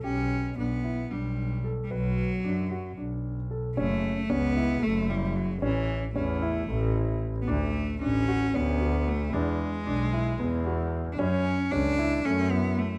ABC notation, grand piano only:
X:1
M:7/8
L:1/8
Q:1/4=113
K:F#phr
V:1 name="Grand piano"
G2 D E D2 A | B2 D F D2 A | C2 C E A, E2 | C2 C E A, E2 |
D2 D F C F2 | D2 D E B, F2 | C2 C E A, E2 |]